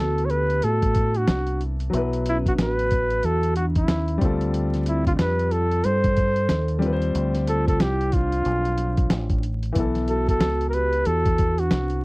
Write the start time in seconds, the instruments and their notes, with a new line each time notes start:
Already playing: upright piano E3 B3 E4 A4, vibraphone F#4, flugelhorn A4
0.00 fingered electric bass D2
0.18 closed hi-hat
0.25 vibraphone A4, flugelhorn C#5
0.29 vibraphone G4, flugelhorn B4, closed hi-hat
0.50 closed hi-hat
0.62 fingered electric bass A2, vibraphone F#4, flugelhorn A4, closed hi-hat
0.82 kick, closed hi-hat
0.95 kick, closed hi-hat
1.14 vibraphone D4, flugelhorn F#4, closed hi-hat
1.28 fingered electric bass C2, snare, closed hi-hat
1.47 closed hi-hat
1.61 closed hi-hat
1.80 closed hi-hat
1.90 fingered electric bass B1, upright piano F#3 B3, closed hi-hat
1.94 upright piano E4 B4
2.13 closed hi-hat
2.26 vibraphone C#4, flugelhorn E4, closed hi-hat
2.46 vibraphone D4, flugelhorn F#4, kick, closed hi-hat
2.58 fingered electric bass A1, vibraphone F#4, flugelhorn B4, snare, closed hi-hat
2.79 closed hi-hat
2.91 kick, closed hi-hat
3.10 closed hi-hat
3.23 fingered electric bass E2, vibraphone F#4, flugelhorn A4, closed hi-hat
3.43 closed hi-hat
3.56 vibraphone D4, flugelhorn F#4, closed hi-hat
3.75 vibraphone C#4, flugelhorn E4, kick, closed hi-hat
3.88 fingered electric bass D#2, snare, closed hi-hat
4.08 closed hi-hat
4.18 fingered electric bass D2, upright piano G3 C4, kick, closed hi-hat
4.23 upright piano F4 A4
4.41 closed hi-hat
4.54 closed hi-hat
4.74 snare, closed hi-hat
4.86 vibraphone C4, flugelhorn E4, closed hi-hat
5.06 vibraphone D4, flugelhorn F4, kick, closed hi-hat
5.19 fingered electric bass F2, vibraphone G4, flugelhorn B4, snare, closed hi-hat
5.39 closed hi-hat
5.51 vibraphone F4, flugelhorn A4, closed hi-hat
5.71 closed hi-hat
5.84 fingered electric bass G2, vibraphone A4, flugelhorn C5, closed hi-hat
6.04 kick, closed hi-hat
6.17 kick, closed hi-hat
6.36 closed hi-hat
6.49 fingered electric bass D#2, snare, closed hi-hat
6.68 closed hi-hat
6.79 upright piano G3 C4, closed hi-hat
6.84 upright piano F3 B4
6.93 upright piano C5
7.02 closed hi-hat
7.15 fingered electric bass D2, closed hi-hat
7.35 snare, closed hi-hat
7.47 vibraphone F4, flugelhorn A4, closed hi-hat
7.66 vibraphone F4, flugelhorn A4, kick, closed hi-hat
7.79 fingered electric bass C2, vibraphone E4, flugelhorn G4, snare, closed hi-hat
8.01 closed hi-hat
8.11 vibraphone D4, flugelhorn F4, kick, closed hi-hat
8.32 closed hi-hat
8.45 fingered electric bass B1, closed hi-hat
8.65 closed hi-hat
8.78 closed hi-hat
8.97 kick, closed hi-hat
9.10 fingered electric bass A1, snare, closed hi-hat
9.30 kick, closed hi-hat
9.43 closed hi-hat
9.63 closed hi-hat
9.73 fingered electric bass B1, upright piano E3 B3, kick, closed hi-hat
9.77 upright piano E4 A4
9.95 snare, closed hi-hat
10.08 vibraphone F#4, flugelhorn A4, closed hi-hat
10.28 vibraphone F#4, flugelhorn A4, kick, closed hi-hat
10.41 fingered electric bass C#2, snare, closed hi-hat
10.61 closed hi-hat
10.69 vibraphone F#4, flugelhorn A#4
10.73 vibraphone G4, flugelhorn B4, closed hi-hat
10.93 closed hi-hat
11.05 fingered electric bass E2, vibraphone F#4, flugelhorn A4, closed hi-hat
11.25 kick, closed hi-hat
11.38 kick, closed hi-hat
11.58 vibraphone D4, flugelhorn F#4, closed hi-hat
11.71 fingered electric bass C2, snare, closed hi-hat
11.90 closed hi-hat